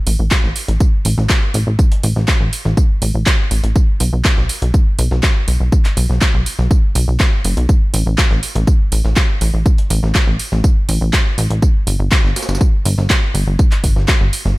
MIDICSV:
0, 0, Header, 1, 3, 480
1, 0, Start_track
1, 0, Tempo, 491803
1, 1746, Time_signature, 4, 2, 24, 8
1, 14230, End_track
2, 0, Start_track
2, 0, Title_t, "Analog synth bass"
2, 0, Program_c, 0, 38
2, 65, Note_on_c, 0, 33, 94
2, 162, Note_off_c, 0, 33, 0
2, 190, Note_on_c, 0, 33, 82
2, 282, Note_off_c, 0, 33, 0
2, 429, Note_on_c, 0, 33, 76
2, 521, Note_off_c, 0, 33, 0
2, 668, Note_on_c, 0, 33, 82
2, 761, Note_off_c, 0, 33, 0
2, 1026, Note_on_c, 0, 33, 93
2, 1122, Note_off_c, 0, 33, 0
2, 1149, Note_on_c, 0, 33, 85
2, 1241, Note_off_c, 0, 33, 0
2, 1506, Note_on_c, 0, 33, 94
2, 1603, Note_off_c, 0, 33, 0
2, 1630, Note_on_c, 0, 33, 83
2, 1721, Note_off_c, 0, 33, 0
2, 1987, Note_on_c, 0, 33, 95
2, 2083, Note_off_c, 0, 33, 0
2, 2110, Note_on_c, 0, 33, 82
2, 2201, Note_off_c, 0, 33, 0
2, 2348, Note_on_c, 0, 33, 75
2, 2441, Note_off_c, 0, 33, 0
2, 2589, Note_on_c, 0, 33, 82
2, 2681, Note_off_c, 0, 33, 0
2, 2946, Note_on_c, 0, 33, 95
2, 3043, Note_off_c, 0, 33, 0
2, 3070, Note_on_c, 0, 33, 82
2, 3161, Note_off_c, 0, 33, 0
2, 3426, Note_on_c, 0, 33, 92
2, 3523, Note_off_c, 0, 33, 0
2, 3549, Note_on_c, 0, 33, 81
2, 3641, Note_off_c, 0, 33, 0
2, 3907, Note_on_c, 0, 35, 91
2, 4003, Note_off_c, 0, 35, 0
2, 4030, Note_on_c, 0, 35, 82
2, 4121, Note_off_c, 0, 35, 0
2, 4271, Note_on_c, 0, 35, 77
2, 4362, Note_off_c, 0, 35, 0
2, 4510, Note_on_c, 0, 35, 81
2, 4602, Note_off_c, 0, 35, 0
2, 4867, Note_on_c, 0, 35, 97
2, 4963, Note_off_c, 0, 35, 0
2, 4990, Note_on_c, 0, 35, 85
2, 5082, Note_off_c, 0, 35, 0
2, 5347, Note_on_c, 0, 35, 97
2, 5443, Note_off_c, 0, 35, 0
2, 5470, Note_on_c, 0, 35, 80
2, 5562, Note_off_c, 0, 35, 0
2, 5826, Note_on_c, 0, 35, 95
2, 5923, Note_off_c, 0, 35, 0
2, 5950, Note_on_c, 0, 35, 83
2, 6041, Note_off_c, 0, 35, 0
2, 6190, Note_on_c, 0, 35, 75
2, 6281, Note_off_c, 0, 35, 0
2, 6430, Note_on_c, 0, 35, 81
2, 6521, Note_off_c, 0, 35, 0
2, 6787, Note_on_c, 0, 35, 98
2, 6883, Note_off_c, 0, 35, 0
2, 6910, Note_on_c, 0, 35, 84
2, 7001, Note_off_c, 0, 35, 0
2, 7267, Note_on_c, 0, 30, 94
2, 7363, Note_off_c, 0, 30, 0
2, 7389, Note_on_c, 0, 35, 81
2, 7481, Note_off_c, 0, 35, 0
2, 7746, Note_on_c, 0, 33, 95
2, 7843, Note_off_c, 0, 33, 0
2, 7869, Note_on_c, 0, 33, 81
2, 7961, Note_off_c, 0, 33, 0
2, 8109, Note_on_c, 0, 33, 76
2, 8201, Note_off_c, 0, 33, 0
2, 8350, Note_on_c, 0, 33, 82
2, 8441, Note_off_c, 0, 33, 0
2, 8706, Note_on_c, 0, 33, 97
2, 8803, Note_off_c, 0, 33, 0
2, 8829, Note_on_c, 0, 33, 85
2, 8921, Note_off_c, 0, 33, 0
2, 9186, Note_on_c, 0, 33, 95
2, 9283, Note_off_c, 0, 33, 0
2, 9309, Note_on_c, 0, 33, 79
2, 9401, Note_off_c, 0, 33, 0
2, 9665, Note_on_c, 0, 33, 97
2, 9762, Note_off_c, 0, 33, 0
2, 9788, Note_on_c, 0, 33, 81
2, 9881, Note_off_c, 0, 33, 0
2, 10028, Note_on_c, 0, 33, 74
2, 10120, Note_off_c, 0, 33, 0
2, 10268, Note_on_c, 0, 33, 81
2, 10361, Note_off_c, 0, 33, 0
2, 10625, Note_on_c, 0, 33, 100
2, 10722, Note_off_c, 0, 33, 0
2, 10749, Note_on_c, 0, 33, 83
2, 10841, Note_off_c, 0, 33, 0
2, 11106, Note_on_c, 0, 33, 97
2, 11203, Note_off_c, 0, 33, 0
2, 11228, Note_on_c, 0, 33, 81
2, 11321, Note_off_c, 0, 33, 0
2, 11585, Note_on_c, 0, 31, 93
2, 11682, Note_off_c, 0, 31, 0
2, 11707, Note_on_c, 0, 31, 83
2, 11800, Note_off_c, 0, 31, 0
2, 11948, Note_on_c, 0, 31, 74
2, 12040, Note_off_c, 0, 31, 0
2, 12188, Note_on_c, 0, 31, 85
2, 12281, Note_off_c, 0, 31, 0
2, 12546, Note_on_c, 0, 31, 96
2, 12642, Note_off_c, 0, 31, 0
2, 12667, Note_on_c, 0, 31, 84
2, 12760, Note_off_c, 0, 31, 0
2, 13024, Note_on_c, 0, 31, 97
2, 13122, Note_off_c, 0, 31, 0
2, 13147, Note_on_c, 0, 31, 79
2, 13240, Note_off_c, 0, 31, 0
2, 13505, Note_on_c, 0, 31, 93
2, 13602, Note_off_c, 0, 31, 0
2, 13628, Note_on_c, 0, 31, 81
2, 13720, Note_off_c, 0, 31, 0
2, 13868, Note_on_c, 0, 31, 77
2, 13961, Note_off_c, 0, 31, 0
2, 14108, Note_on_c, 0, 31, 81
2, 14200, Note_off_c, 0, 31, 0
2, 14230, End_track
3, 0, Start_track
3, 0, Title_t, "Drums"
3, 65, Note_on_c, 9, 46, 108
3, 66, Note_on_c, 9, 54, 67
3, 162, Note_off_c, 9, 46, 0
3, 163, Note_off_c, 9, 54, 0
3, 303, Note_on_c, 9, 39, 125
3, 305, Note_on_c, 9, 38, 110
3, 305, Note_on_c, 9, 54, 83
3, 306, Note_on_c, 9, 36, 113
3, 400, Note_off_c, 9, 39, 0
3, 403, Note_off_c, 9, 36, 0
3, 403, Note_off_c, 9, 38, 0
3, 403, Note_off_c, 9, 54, 0
3, 428, Note_on_c, 9, 38, 36
3, 526, Note_off_c, 9, 38, 0
3, 544, Note_on_c, 9, 46, 94
3, 545, Note_on_c, 9, 54, 65
3, 642, Note_off_c, 9, 46, 0
3, 643, Note_off_c, 9, 54, 0
3, 668, Note_on_c, 9, 42, 44
3, 766, Note_off_c, 9, 42, 0
3, 785, Note_on_c, 9, 36, 114
3, 785, Note_on_c, 9, 54, 95
3, 882, Note_off_c, 9, 54, 0
3, 883, Note_off_c, 9, 36, 0
3, 1025, Note_on_c, 9, 46, 101
3, 1026, Note_on_c, 9, 54, 67
3, 1122, Note_off_c, 9, 46, 0
3, 1123, Note_off_c, 9, 54, 0
3, 1149, Note_on_c, 9, 38, 46
3, 1246, Note_off_c, 9, 38, 0
3, 1263, Note_on_c, 9, 39, 123
3, 1265, Note_on_c, 9, 36, 118
3, 1266, Note_on_c, 9, 38, 116
3, 1266, Note_on_c, 9, 54, 90
3, 1360, Note_off_c, 9, 39, 0
3, 1363, Note_off_c, 9, 36, 0
3, 1363, Note_off_c, 9, 38, 0
3, 1363, Note_off_c, 9, 54, 0
3, 1505, Note_on_c, 9, 46, 95
3, 1506, Note_on_c, 9, 54, 66
3, 1603, Note_off_c, 9, 46, 0
3, 1604, Note_off_c, 9, 54, 0
3, 1746, Note_on_c, 9, 36, 124
3, 1746, Note_on_c, 9, 54, 86
3, 1843, Note_off_c, 9, 36, 0
3, 1844, Note_off_c, 9, 54, 0
3, 1871, Note_on_c, 9, 42, 44
3, 1968, Note_off_c, 9, 42, 0
3, 1985, Note_on_c, 9, 46, 106
3, 1986, Note_on_c, 9, 54, 65
3, 2083, Note_off_c, 9, 46, 0
3, 2084, Note_off_c, 9, 54, 0
3, 2109, Note_on_c, 9, 38, 38
3, 2207, Note_off_c, 9, 38, 0
3, 2224, Note_on_c, 9, 39, 122
3, 2226, Note_on_c, 9, 36, 121
3, 2226, Note_on_c, 9, 38, 112
3, 2226, Note_on_c, 9, 54, 83
3, 2322, Note_off_c, 9, 39, 0
3, 2323, Note_off_c, 9, 36, 0
3, 2324, Note_off_c, 9, 38, 0
3, 2324, Note_off_c, 9, 54, 0
3, 2467, Note_on_c, 9, 46, 99
3, 2467, Note_on_c, 9, 54, 63
3, 2565, Note_off_c, 9, 46, 0
3, 2565, Note_off_c, 9, 54, 0
3, 2590, Note_on_c, 9, 38, 45
3, 2688, Note_off_c, 9, 38, 0
3, 2706, Note_on_c, 9, 36, 119
3, 2707, Note_on_c, 9, 54, 93
3, 2804, Note_off_c, 9, 36, 0
3, 2805, Note_off_c, 9, 54, 0
3, 2946, Note_on_c, 9, 46, 104
3, 2947, Note_on_c, 9, 54, 67
3, 3043, Note_off_c, 9, 46, 0
3, 3044, Note_off_c, 9, 54, 0
3, 3184, Note_on_c, 9, 39, 123
3, 3186, Note_on_c, 9, 36, 127
3, 3187, Note_on_c, 9, 38, 113
3, 3187, Note_on_c, 9, 54, 88
3, 3282, Note_off_c, 9, 39, 0
3, 3284, Note_off_c, 9, 36, 0
3, 3284, Note_off_c, 9, 38, 0
3, 3284, Note_off_c, 9, 54, 0
3, 3426, Note_on_c, 9, 46, 99
3, 3426, Note_on_c, 9, 54, 69
3, 3523, Note_off_c, 9, 54, 0
3, 3524, Note_off_c, 9, 46, 0
3, 3549, Note_on_c, 9, 42, 43
3, 3646, Note_off_c, 9, 42, 0
3, 3666, Note_on_c, 9, 36, 127
3, 3666, Note_on_c, 9, 54, 82
3, 3764, Note_off_c, 9, 36, 0
3, 3764, Note_off_c, 9, 54, 0
3, 3905, Note_on_c, 9, 46, 111
3, 3906, Note_on_c, 9, 54, 67
3, 4003, Note_off_c, 9, 46, 0
3, 4003, Note_off_c, 9, 54, 0
3, 4143, Note_on_c, 9, 39, 118
3, 4146, Note_on_c, 9, 36, 127
3, 4146, Note_on_c, 9, 38, 107
3, 4146, Note_on_c, 9, 54, 84
3, 4241, Note_off_c, 9, 39, 0
3, 4243, Note_off_c, 9, 38, 0
3, 4243, Note_off_c, 9, 54, 0
3, 4244, Note_off_c, 9, 36, 0
3, 4269, Note_on_c, 9, 38, 38
3, 4367, Note_off_c, 9, 38, 0
3, 4385, Note_on_c, 9, 46, 100
3, 4387, Note_on_c, 9, 54, 69
3, 4483, Note_off_c, 9, 46, 0
3, 4484, Note_off_c, 9, 54, 0
3, 4510, Note_on_c, 9, 42, 45
3, 4608, Note_off_c, 9, 42, 0
3, 4626, Note_on_c, 9, 36, 122
3, 4627, Note_on_c, 9, 54, 93
3, 4724, Note_off_c, 9, 36, 0
3, 4724, Note_off_c, 9, 54, 0
3, 4866, Note_on_c, 9, 46, 103
3, 4867, Note_on_c, 9, 54, 64
3, 4964, Note_off_c, 9, 46, 0
3, 4965, Note_off_c, 9, 54, 0
3, 4990, Note_on_c, 9, 38, 48
3, 5088, Note_off_c, 9, 38, 0
3, 5104, Note_on_c, 9, 39, 121
3, 5106, Note_on_c, 9, 36, 126
3, 5107, Note_on_c, 9, 38, 115
3, 5107, Note_on_c, 9, 54, 89
3, 5202, Note_off_c, 9, 39, 0
3, 5204, Note_off_c, 9, 36, 0
3, 5205, Note_off_c, 9, 38, 0
3, 5205, Note_off_c, 9, 54, 0
3, 5346, Note_on_c, 9, 46, 100
3, 5347, Note_on_c, 9, 54, 68
3, 5444, Note_off_c, 9, 46, 0
3, 5445, Note_off_c, 9, 54, 0
3, 5586, Note_on_c, 9, 36, 122
3, 5587, Note_on_c, 9, 54, 84
3, 5684, Note_off_c, 9, 36, 0
3, 5684, Note_off_c, 9, 54, 0
3, 5708, Note_on_c, 9, 39, 36
3, 5710, Note_on_c, 9, 42, 44
3, 5806, Note_off_c, 9, 39, 0
3, 5807, Note_off_c, 9, 42, 0
3, 5826, Note_on_c, 9, 54, 66
3, 5827, Note_on_c, 9, 46, 114
3, 5924, Note_off_c, 9, 54, 0
3, 5925, Note_off_c, 9, 46, 0
3, 5950, Note_on_c, 9, 38, 39
3, 6047, Note_off_c, 9, 38, 0
3, 6065, Note_on_c, 9, 39, 114
3, 6066, Note_on_c, 9, 36, 118
3, 6066, Note_on_c, 9, 38, 107
3, 6066, Note_on_c, 9, 54, 84
3, 6162, Note_off_c, 9, 39, 0
3, 6164, Note_off_c, 9, 36, 0
3, 6164, Note_off_c, 9, 38, 0
3, 6164, Note_off_c, 9, 54, 0
3, 6306, Note_on_c, 9, 54, 65
3, 6308, Note_on_c, 9, 46, 98
3, 6404, Note_off_c, 9, 54, 0
3, 6405, Note_off_c, 9, 46, 0
3, 6429, Note_on_c, 9, 38, 46
3, 6527, Note_off_c, 9, 38, 0
3, 6545, Note_on_c, 9, 54, 92
3, 6546, Note_on_c, 9, 36, 122
3, 6643, Note_off_c, 9, 54, 0
3, 6644, Note_off_c, 9, 36, 0
3, 6786, Note_on_c, 9, 54, 65
3, 6787, Note_on_c, 9, 46, 106
3, 6883, Note_off_c, 9, 54, 0
3, 6885, Note_off_c, 9, 46, 0
3, 7024, Note_on_c, 9, 39, 117
3, 7025, Note_on_c, 9, 38, 115
3, 7025, Note_on_c, 9, 54, 88
3, 7026, Note_on_c, 9, 36, 122
3, 7122, Note_off_c, 9, 39, 0
3, 7123, Note_off_c, 9, 38, 0
3, 7123, Note_off_c, 9, 54, 0
3, 7124, Note_off_c, 9, 36, 0
3, 7266, Note_on_c, 9, 54, 66
3, 7267, Note_on_c, 9, 46, 101
3, 7363, Note_off_c, 9, 54, 0
3, 7364, Note_off_c, 9, 46, 0
3, 7389, Note_on_c, 9, 42, 44
3, 7487, Note_off_c, 9, 42, 0
3, 7506, Note_on_c, 9, 36, 118
3, 7506, Note_on_c, 9, 54, 86
3, 7604, Note_off_c, 9, 36, 0
3, 7604, Note_off_c, 9, 54, 0
3, 7746, Note_on_c, 9, 46, 108
3, 7747, Note_on_c, 9, 54, 67
3, 7844, Note_off_c, 9, 46, 0
3, 7844, Note_off_c, 9, 54, 0
3, 7983, Note_on_c, 9, 39, 114
3, 7986, Note_on_c, 9, 36, 118
3, 7987, Note_on_c, 9, 38, 109
3, 7987, Note_on_c, 9, 54, 82
3, 8081, Note_off_c, 9, 39, 0
3, 8084, Note_off_c, 9, 36, 0
3, 8084, Note_off_c, 9, 38, 0
3, 8084, Note_off_c, 9, 54, 0
3, 8110, Note_on_c, 9, 38, 38
3, 8207, Note_off_c, 9, 38, 0
3, 8226, Note_on_c, 9, 46, 95
3, 8227, Note_on_c, 9, 54, 64
3, 8324, Note_off_c, 9, 46, 0
3, 8325, Note_off_c, 9, 54, 0
3, 8350, Note_on_c, 9, 42, 45
3, 8448, Note_off_c, 9, 42, 0
3, 8466, Note_on_c, 9, 36, 120
3, 8467, Note_on_c, 9, 54, 92
3, 8563, Note_off_c, 9, 36, 0
3, 8565, Note_off_c, 9, 54, 0
3, 8705, Note_on_c, 9, 46, 100
3, 8707, Note_on_c, 9, 54, 67
3, 8803, Note_off_c, 9, 46, 0
3, 8804, Note_off_c, 9, 54, 0
3, 8830, Note_on_c, 9, 38, 47
3, 8927, Note_off_c, 9, 38, 0
3, 8943, Note_on_c, 9, 39, 112
3, 8945, Note_on_c, 9, 38, 118
3, 8945, Note_on_c, 9, 54, 90
3, 8946, Note_on_c, 9, 36, 121
3, 9040, Note_off_c, 9, 39, 0
3, 9043, Note_off_c, 9, 36, 0
3, 9043, Note_off_c, 9, 38, 0
3, 9043, Note_off_c, 9, 54, 0
3, 9186, Note_on_c, 9, 46, 97
3, 9186, Note_on_c, 9, 54, 69
3, 9283, Note_off_c, 9, 46, 0
3, 9284, Note_off_c, 9, 54, 0
3, 9425, Note_on_c, 9, 36, 114
3, 9426, Note_on_c, 9, 54, 86
3, 9523, Note_off_c, 9, 36, 0
3, 9523, Note_off_c, 9, 54, 0
3, 9549, Note_on_c, 9, 42, 44
3, 9646, Note_off_c, 9, 42, 0
3, 9666, Note_on_c, 9, 46, 104
3, 9666, Note_on_c, 9, 54, 66
3, 9764, Note_off_c, 9, 46, 0
3, 9764, Note_off_c, 9, 54, 0
3, 9789, Note_on_c, 9, 38, 39
3, 9886, Note_off_c, 9, 38, 0
3, 9903, Note_on_c, 9, 39, 109
3, 9905, Note_on_c, 9, 36, 111
3, 9906, Note_on_c, 9, 38, 111
3, 9906, Note_on_c, 9, 54, 85
3, 10001, Note_off_c, 9, 39, 0
3, 10003, Note_off_c, 9, 36, 0
3, 10004, Note_off_c, 9, 38, 0
3, 10004, Note_off_c, 9, 54, 0
3, 10145, Note_on_c, 9, 46, 94
3, 10145, Note_on_c, 9, 54, 68
3, 10243, Note_off_c, 9, 46, 0
3, 10243, Note_off_c, 9, 54, 0
3, 10268, Note_on_c, 9, 38, 48
3, 10366, Note_off_c, 9, 38, 0
3, 10385, Note_on_c, 9, 36, 113
3, 10385, Note_on_c, 9, 54, 91
3, 10482, Note_off_c, 9, 54, 0
3, 10483, Note_off_c, 9, 36, 0
3, 10625, Note_on_c, 9, 46, 101
3, 10626, Note_on_c, 9, 54, 65
3, 10723, Note_off_c, 9, 46, 0
3, 10723, Note_off_c, 9, 54, 0
3, 10864, Note_on_c, 9, 39, 114
3, 10865, Note_on_c, 9, 36, 118
3, 10865, Note_on_c, 9, 38, 116
3, 10865, Note_on_c, 9, 54, 89
3, 10962, Note_off_c, 9, 39, 0
3, 10963, Note_off_c, 9, 36, 0
3, 10963, Note_off_c, 9, 38, 0
3, 10963, Note_off_c, 9, 54, 0
3, 11106, Note_on_c, 9, 46, 96
3, 11106, Note_on_c, 9, 54, 67
3, 11204, Note_off_c, 9, 46, 0
3, 11204, Note_off_c, 9, 54, 0
3, 11229, Note_on_c, 9, 42, 44
3, 11326, Note_off_c, 9, 42, 0
3, 11345, Note_on_c, 9, 36, 113
3, 11346, Note_on_c, 9, 54, 83
3, 11443, Note_off_c, 9, 36, 0
3, 11443, Note_off_c, 9, 54, 0
3, 11586, Note_on_c, 9, 46, 104
3, 11586, Note_on_c, 9, 54, 65
3, 11683, Note_off_c, 9, 46, 0
3, 11683, Note_off_c, 9, 54, 0
3, 11824, Note_on_c, 9, 39, 117
3, 11825, Note_on_c, 9, 36, 114
3, 11826, Note_on_c, 9, 38, 109
3, 11826, Note_on_c, 9, 54, 85
3, 11922, Note_off_c, 9, 39, 0
3, 11923, Note_off_c, 9, 36, 0
3, 11923, Note_off_c, 9, 38, 0
3, 11923, Note_off_c, 9, 54, 0
3, 11949, Note_on_c, 9, 38, 38
3, 12046, Note_off_c, 9, 38, 0
3, 12066, Note_on_c, 9, 38, 86
3, 12066, Note_on_c, 9, 46, 88
3, 12066, Note_on_c, 9, 54, 67
3, 12127, Note_off_c, 9, 38, 0
3, 12127, Note_off_c, 9, 54, 0
3, 12127, Note_on_c, 9, 38, 84
3, 12127, Note_on_c, 9, 54, 66
3, 12164, Note_off_c, 9, 46, 0
3, 12189, Note_off_c, 9, 38, 0
3, 12189, Note_off_c, 9, 54, 0
3, 12189, Note_on_c, 9, 38, 91
3, 12189, Note_on_c, 9, 54, 67
3, 12247, Note_off_c, 9, 38, 0
3, 12247, Note_off_c, 9, 54, 0
3, 12247, Note_on_c, 9, 38, 90
3, 12247, Note_on_c, 9, 54, 69
3, 12305, Note_off_c, 9, 54, 0
3, 12305, Note_on_c, 9, 54, 92
3, 12306, Note_on_c, 9, 36, 112
3, 12345, Note_off_c, 9, 38, 0
3, 12403, Note_off_c, 9, 36, 0
3, 12403, Note_off_c, 9, 54, 0
3, 12546, Note_on_c, 9, 46, 96
3, 12546, Note_on_c, 9, 54, 68
3, 12644, Note_off_c, 9, 46, 0
3, 12644, Note_off_c, 9, 54, 0
3, 12668, Note_on_c, 9, 38, 48
3, 12766, Note_off_c, 9, 38, 0
3, 12784, Note_on_c, 9, 39, 118
3, 12785, Note_on_c, 9, 36, 116
3, 12785, Note_on_c, 9, 38, 119
3, 12785, Note_on_c, 9, 54, 89
3, 12882, Note_off_c, 9, 39, 0
3, 12883, Note_off_c, 9, 36, 0
3, 12883, Note_off_c, 9, 38, 0
3, 12883, Note_off_c, 9, 54, 0
3, 13025, Note_on_c, 9, 54, 69
3, 13027, Note_on_c, 9, 46, 91
3, 13123, Note_off_c, 9, 54, 0
3, 13124, Note_off_c, 9, 46, 0
3, 13265, Note_on_c, 9, 36, 119
3, 13265, Note_on_c, 9, 54, 85
3, 13363, Note_off_c, 9, 36, 0
3, 13363, Note_off_c, 9, 54, 0
3, 13387, Note_on_c, 9, 39, 38
3, 13389, Note_on_c, 9, 42, 44
3, 13484, Note_off_c, 9, 39, 0
3, 13487, Note_off_c, 9, 42, 0
3, 13505, Note_on_c, 9, 36, 60
3, 13505, Note_on_c, 9, 46, 102
3, 13506, Note_on_c, 9, 54, 69
3, 13603, Note_off_c, 9, 36, 0
3, 13603, Note_off_c, 9, 46, 0
3, 13604, Note_off_c, 9, 54, 0
3, 13630, Note_on_c, 9, 38, 39
3, 13727, Note_off_c, 9, 38, 0
3, 13743, Note_on_c, 9, 39, 120
3, 13745, Note_on_c, 9, 36, 111
3, 13746, Note_on_c, 9, 38, 116
3, 13746, Note_on_c, 9, 54, 87
3, 13840, Note_off_c, 9, 39, 0
3, 13843, Note_off_c, 9, 36, 0
3, 13843, Note_off_c, 9, 38, 0
3, 13843, Note_off_c, 9, 54, 0
3, 13986, Note_on_c, 9, 46, 93
3, 13986, Note_on_c, 9, 54, 67
3, 14083, Note_off_c, 9, 46, 0
3, 14084, Note_off_c, 9, 54, 0
3, 14109, Note_on_c, 9, 38, 46
3, 14207, Note_off_c, 9, 38, 0
3, 14230, End_track
0, 0, End_of_file